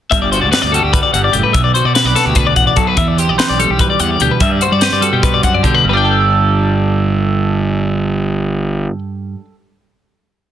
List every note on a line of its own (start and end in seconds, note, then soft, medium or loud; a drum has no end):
0.11 0.43 G1 medium
0.11 1.14 G2 medium
0.11 0.21 E5 medium
0.11 kick medium
0.11 closed hi-hat medium
0.22 0.32 D5 medium
0.32 0.74 F#4 medium
0.32 0.41 C5 medium
0.32 closed hi-hat medium
0.41 0.51 D2 medium
0.41 0.51 D5 medium
0.52 0.62 B4 medium
0.52 1.96 D5 medium
0.52 snare medium
0.52 closed hi-hat medium
0.62 0.80 D2 medium
0.62 0.72 D5 medium
0.72 1.55 G3 medium
0.72 1.53 F#4 soft
0.72 0.83 A4 medium
0.72 closed hi-hat medium
0.83 1.01 D2 medium
0.83 0.93 G4 medium
0.93 1.02 B4 medium
0.93 kick medium
0.93 closed hi-hat medium
1.03 1.13 D5 medium
1.13 1.31 G1 medium
1.13 1.35 G2 medium
1.13 1.24 F#5 medium
1.13 closed hi-hat soft
1.24 1.34 D5 medium
1.33 1.42 F#1 medium
1.33 1.55 A2 soft
1.33 1.44 G4 medium
1.33 closed hi-hat soft
1.43 1.54 B4 medium
1.53 1.72 B1 medium
1.53 2.96 B2 medium
1.53 1.64 E5 medium
1.53 kick medium
1.53 closed hi-hat medium
1.64 1.74 D5 medium
1.74 2.16 F#4 medium
1.74 1.85 C5 medium
1.74 closed hi-hat medium
1.85 2.03 B2 medium
1.85 1.95 D5 medium
1.95 2.06 B4 medium
1.95 3.38 B4 medium
1.95 snare medium
1.95 closed hi-hat medium
2.05 2.14 B1 medium
2.05 2.16 D5 medium
2.15 3.41 B3 medium
2.15 2.96 F#4 medium
2.15 2.25 A4 medium
2.15 snare soft
2.15 closed hi-hat soft
2.25 2.52 D2 medium
2.25 2.36 G4 medium
2.35 2.47 B4 medium
2.35 kick medium
2.35 closed hi-hat medium
2.47 2.56 D5 medium
2.56 2.74 A1 medium
2.56 2.67 F#5 medium
2.56 kick medium
2.56 closed hi-hat soft
2.67 2.77 D5 medium
2.76 2.95 B1 medium
2.76 2.95 F#3 soft
2.76 2.87 A4 medium
2.76 kick medium
2.76 closed hi-hat soft
2.87 2.98 B4 medium
2.97 3.29 E2 medium
2.97 4.39 E3 medium
2.97 3.08 E5 medium
2.97 kick medium
2.97 closed hi-hat medium
3.08 3.18 D5 medium
3.18 3.59 G4 medium
3.18 3.29 C5 medium
3.18 closed hi-hat soft
3.28 3.37 B1 medium
3.28 3.38 D5 medium
3.38 3.49 B4 medium
3.38 4.39 C5 medium
3.38 snare loud
3.38 closed hi-hat medium
3.49 3.67 B1 medium
3.49 3.60 D5 medium
3.59 5.00 G3 medium
3.59 4.61 G4 soft
3.59 3.71 A4 medium
3.59 closed hi-hat medium
3.70 3.87 B1 medium
3.70 3.80 G4 medium
3.79 3.89 B4 medium
3.79 kick medium
3.79 closed hi-hat medium
3.90 4.00 D5 medium
4.00 4.18 E2 medium
4.00 4.11 F#5 medium
4.00 closed hi-hat medium
4.11 4.21 D5 medium
4.20 4.29 D2 medium
4.20 4.39 B2 soft
4.20 4.32 G4 medium
4.20 closed hi-hat soft
4.31 4.42 B4 medium
4.40 5.83 G2 medium
4.40 4.59 G2 medium
4.40 4.52 E5 medium
4.40 kick loud
4.40 closed hi-hat medium
4.52 4.62 D5 medium
4.61 5.01 F#4 soft
4.61 4.72 C5 medium
4.61 closed hi-hat medium
4.72 4.90 G3 medium
4.72 4.83 D5 medium
4.81 4.93 B4 medium
4.81 5.82 C5 medium
4.81 snare medium
4.81 closed hi-hat medium
4.92 5.01 G2 medium
4.92 5.03 D5 medium
5.01 5.89 G3 medium
5.01 5.82 F#4 medium
5.01 5.13 A4 medium
5.01 closed hi-hat medium
5.13 5.39 B2 medium
5.13 5.23 G4 medium
5.23 5.34 B4 medium
5.23 kick medium
5.23 closed hi-hat medium
5.34 5.44 D5 medium
5.43 5.61 F#2 medium
5.43 5.54 F#5 medium
5.43 kick medium
5.43 closed hi-hat soft
5.54 5.65 D5 medium
5.63 5.82 B2 medium
5.63 5.84 D3 soft
5.63 5.75 G4 medium
5.63 kick medium
5.63 closed hi-hat soft
5.75 5.85 B4 medium
5.84 8.86 G1 medium
5.84 9.34 G2 soft
5.89 9.40 G3 soft
5.89 5.93 B4 medium
5.93 9.45 D4 soft
5.93 8.99 D5 medium
5.93 8.98 G5 medium
6.05 9.55 A4 soft